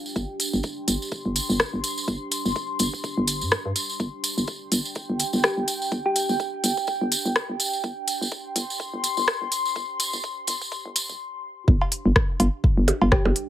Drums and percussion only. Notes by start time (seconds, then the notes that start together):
0.06 tambourine
0.16 kick, tambourine
0.40 open hi-hat, tambourine
0.53 tambourine
0.63 kick, tambourine
0.88 open hi-hat, tambourine
1.02 tambourine
1.12 kick, tambourine
1.36 open hi-hat, tambourine
1.50 tambourine
1.60 kick, cross-stick, tambourine
1.84 open hi-hat, tambourine
1.98 tambourine
2.08 kick, tambourine
2.31 open hi-hat, tambourine
2.45 tambourine
2.56 kick, tambourine
2.79 open hi-hat, tambourine
2.94 kick, tambourine
3.04 kick, tambourine
3.27 open hi-hat, tambourine
3.41 tambourine
3.51 kick, cross-stick, tambourine
3.76 open hi-hat, tambourine
3.90 tambourine
4.00 kick, tambourine
4.24 open hi-hat, tambourine
4.38 tambourine
4.47 kick, tambourine
4.72 open hi-hat, tambourine
4.85 tambourine
4.95 kick, tambourine
5.19 open hi-hat, tambourine
5.33 tambourine
5.44 kick, cross-stick, tambourine
5.68 open hi-hat, tambourine
5.82 tambourine
5.92 kick, tambourine
6.16 open hi-hat, tambourine
6.29 tambourine
6.40 kick, tambourine
6.64 open hi-hat, tambourine
6.77 kick, tambourine
6.87 kick, tambourine
7.12 open hi-hat, tambourine
7.25 tambourine
7.36 kick, cross-stick, tambourine
7.60 open hi-hat, tambourine
7.73 tambourine
7.84 kick, tambourine
8.07 open hi-hat, tambourine
8.22 tambourine
8.32 kick
8.56 open hi-hat, tambourine
8.70 tambourine
8.80 kick, tambourine
9.04 open hi-hat, tambourine
9.17 tambourine
9.28 kick, cross-stick, tambourine
9.52 open hi-hat, tambourine
9.65 tambourine
9.76 kick, tambourine
10.00 open hi-hat, tambourine
10.13 tambourine
10.24 kick, tambourine
10.47 open hi-hat, tambourine
10.62 kick, tambourine
10.72 kick, tambourine
10.96 open hi-hat, tambourine
11.09 tambourine
11.68 kick
11.81 cowbell
11.92 open hi-hat
12.16 kick, cross-stick
12.40 open hi-hat, cowbell
12.64 kick
12.88 open hi-hat, percussion blips
13.02 cowbell
13.12 kick, cross-stick
13.25 percussion blips
13.36 open hi-hat